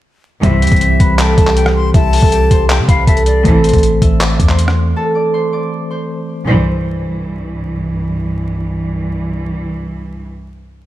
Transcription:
0.42 0.64 C2 loud
0.42 0.70 G2 loud
0.42 0.70 C3 loud
0.42 3.41 E3 medium
0.42 0.70 E3 loud
0.42 3.41 G3 medium
0.42 3.41 C4 medium
0.42 1.95 E4 medium
0.42 3.42 G4 medium
0.42 3.42 C5 medium
0.42 1.15 E5 loud
0.42 1.94 E5 loud
0.42 kick loud
0.42 closed hi-hat medium
0.62 0.71 D2 loud
0.62 1.48 G4 medium
0.62 1.47 G5 medium
0.62 closed hi-hat medium
0.67 closed hi-hat medium
0.72 0.99 C2 loud
0.72 kick medium
0.72 closed hi-hat medium
0.76 closed hi-hat soft
0.81 closed hi-hat medium
1.00 1.36 C2 loud
1.00 2.57 B4 medium
1.00 2.35 B5 medium
1.00 kick medium
1.00 closed hi-hat medium
1.19 2.14 A4 medium
1.19 1.37 G5 medium
1.19 2.13 A5 medium
1.19 clap loud
1.19 closed hi-hat medium
1.38 1.92 C2 loud
1.38 1.56 A5 medium
1.38 kick loud
1.38 closed hi-hat medium
1.47 2.32 G4 medium
1.47 2.32 G5 medium
1.47 clap medium
1.57 1.74 G5 medium
1.57 closed hi-hat medium
1.66 cross-stick medium
1.75 1.93 C6 medium
1.94 2.21 C2 loud
1.94 4.56 E4 medium
1.94 3.67 E5 loud
1.94 2.66 A5 loud
1.94 kick loud
1.94 closed hi-hat medium
2.13 3.08 A4 medium
2.13 3.07 A5 medium
2.13 open hi-hat medium
2.23 2.50 C2 loud
2.23 kick medium
2.32 4.68 G4 medium
2.32 3.87 G5 medium
2.32 closed hi-hat medium
2.51 2.81 C2 loud
2.51 2.94 C5 medium
2.51 2.94 C6 medium
2.51 kick medium
2.51 closed hi-hat medium
2.70 2.88 G5 medium
2.70 clap loud
2.70 closed hi-hat medium
2.79 2.88 C3 loud
2.88 3.07 C2 loud
2.88 3.70 B4 medium
2.88 3.07 F5 medium
2.88 3.70 B5 medium
2.88 kick loud
2.88 closed hi-hat medium
3.07 3.44 C2 loud
3.07 3.46 A4 medium
3.07 3.25 E5 medium
3.07 3.45 A5 medium
3.07 kick loud
3.07 closed hi-hat medium
3.17 closed hi-hat medium
3.26 3.44 D5 medium
3.26 closed hi-hat medium
3.44 3.72 A1 loud
3.44 3.72 A2 loud
3.44 3.72 C3 loud
3.44 6.43 E3 medium
3.44 3.72 E3 loud
3.44 6.43 A3 medium
3.44 6.43 C4 medium
3.44 6.43 A4 medium
3.44 4.97 A4 medium
3.44 6.44 C5 medium
3.44 4.90 A5 loud
3.44 kick loud
3.44 closed hi-hat medium
3.64 4.49 C5 medium
3.64 4.49 C6 medium
3.64 closed hi-hat medium
3.69 closed hi-hat medium
3.73 4.01 A1 loud
3.73 kick medium
3.73 closed hi-hat medium
3.78 closed hi-hat soft
3.83 closed hi-hat medium
4.02 4.38 A1 loud
4.02 5.75 E5 medium
4.02 5.16 E6 medium
4.02 kick medium
4.02 closed hi-hat medium
4.21 5.15 D5 medium
4.21 5.15 D6 medium
4.21 clap loud
4.21 closed hi-hat medium
4.40 4.94 E2 loud
4.40 kick loud
4.40 closed hi-hat medium
4.49 5.34 C5 medium
4.49 5.33 C6 medium
4.49 clap medium
4.59 closed hi-hat medium
4.68 cross-stick medium
4.96 7.17 A4 medium
4.96 6.41 A5 loud
5.15 5.53 D5 medium
5.15 5.52 D6 medium
5.34 5.91 C5 medium
5.34 5.90 C6 medium
5.53 7.38 D5 medium
5.53 6.75 D6 medium
5.90 6.47 C5 medium
5.90 7.21 C6 medium
6.47 10.25 C2 medium
6.47 10.25 G2 medium
6.47 10.25 E3 loud
6.47 8.45 C5 medium

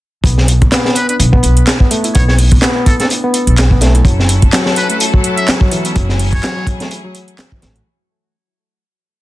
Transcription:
0.24 0.65 B1 loud
0.24 0.71 B3 loud
0.24 kick loud
0.24 closed hi-hat soft
0.24 closed hi-hat loud
0.38 snare soft
0.48 closed hi-hat medium
0.62 kick loud
0.62 closed hi-hat soft
0.72 0.84 B3 loud
0.72 snare loud
0.72 clap loud
0.72 closed hi-hat medium
0.72 closed hi-hat soft
0.85 0.95 B3 medium
0.85 snare medium
0.95 1.04 B4 medium
0.95 closed hi-hat medium
1.08 1.32 D4 medium
1.08 1.16 B4 medium
1.08 closed hi-hat soft
1.20 1.36 B1 loud
1.20 closed hi-hat medium
1.20 closed hi-hat soft
1.33 1.79 B3 loud
1.33 kick medium
1.43 1.59 B1 medium
1.43 closed hi-hat medium
1.57 closed hi-hat soft
1.67 snare loud
1.67 clap loud
1.67 closed hi-hat soft
1.67 closed hi-hat medium
1.80 1.90 B3 medium
1.80 kick medium
1.91 2.03 A3 loud
1.91 closed hi-hat medium
2.04 2.14 E4 medium
2.04 closed hi-hat soft
2.15 2.57 B1 loud
2.15 2.62 B3 loud
2.15 2.23 C#5 medium
2.15 kick loud
2.15 closed hi-hat soft
2.15 closed hi-hat medium
2.28 2.35 C#5 medium
2.28 snare soft
2.38 closed hi-hat medium
2.38 open hi-hat medium
2.52 kick loud
2.52 closed hi-hat soft
2.62 2.75 B3 loud
2.62 snare loud
2.62 clap loud
2.62 closed hi-hat medium
2.62 closed hi-hat soft
2.76 2.85 B3 medium
2.86 2.95 A4 medium
2.86 kick loud
2.86 closed hi-hat medium
3.00 3.22 D4 medium
3.00 3.06 A4 medium
3.00 snare soft
3.00 closed hi-hat soft
3.10 closed hi-hat soft
3.10 closed hi-hat medium
3.24 3.69 B3 loud
3.34 closed hi-hat medium
3.47 3.99 B1 medium
3.47 closed hi-hat soft
3.57 snare loud
3.57 clap loud
3.57 closed hi-hat medium
3.57 closed hi-hat soft
3.71 3.80 B3 medium
3.71 kick loud
3.81 3.93 A3 loud
3.81 snare medium
3.81 closed hi-hat medium
3.95 4.04 E4 medium
3.95 closed hi-hat soft
4.05 4.46 F#1 loud
4.05 7.82 F#3 medium
4.05 4.51 F#3 loud
4.05 7.82 A3 medium
4.05 7.82 C#4 medium
4.05 7.82 E4 medium
4.05 5.94 A4 medium
4.05 kick loud
4.05 closed hi-hat medium
4.05 closed hi-hat soft
4.20 snare soft
4.29 closed hi-hat medium
4.42 kick medium
4.42 closed hi-hat soft
4.53 4.65 F#3 loud
4.53 snare loud
4.53 clap loud
4.53 closed hi-hat medium
4.53 closed hi-hat soft
4.66 4.75 F#3 medium
4.66 snare medium
4.76 4.85 B4 medium
4.76 closed hi-hat medium
4.90 5.12 A3 medium
4.90 4.97 B4 medium
4.90 closed hi-hat soft
5.00 closed hi-hat soft
5.00 closed hi-hat loud
5.14 5.60 F#3 loud
5.14 kick medium
5.24 closed hi-hat medium
5.37 5.49 E5 medium
5.37 closed hi-hat soft
5.48 snare loud
5.48 clap loud
5.48 closed hi-hat soft
5.48 closed hi-hat medium
5.61 5.71 F#3 medium
5.61 kick loud
5.72 5.84 E3 loud
5.72 closed hi-hat medium
5.85 5.95 B3 medium
5.85 closed hi-hat soft
5.95 6.37 F#1 loud
5.95 6.42 F#3 loud
5.95 7.84 G#4 medium
5.95 kick loud
5.95 closed hi-hat soft
5.95 closed hi-hat medium
6.09 snare soft
6.19 closed hi-hat medium
6.19 open hi-hat medium
6.33 6.67 C#5 medium
6.33 kick medium
6.33 closed hi-hat soft
6.43 6.55 F#3 loud
6.43 snare loud
6.43 clap loud
6.43 closed hi-hat soft
6.43 closed hi-hat medium
6.57 6.66 F#3 medium
6.67 kick loud
6.67 closed hi-hat medium
6.80 7.03 A3 medium
6.80 snare soft
6.80 closed hi-hat soft
6.91 closed hi-hat soft
6.91 closed hi-hat medium
7.04 7.14 F#3 loud
7.15 closed hi-hat medium
7.28 closed hi-hat soft
7.39 snare loud
7.39 clap loud
7.39 closed hi-hat soft
7.39 closed hi-hat loud
7.52 7.61 E3 medium
7.52 kick loud
7.62 7.79 A1 loud
7.62 7.74 A3 medium
7.62 snare medium
7.62 closed hi-hat medium
7.76 7.85 F#4 medium
7.76 closed hi-hat soft

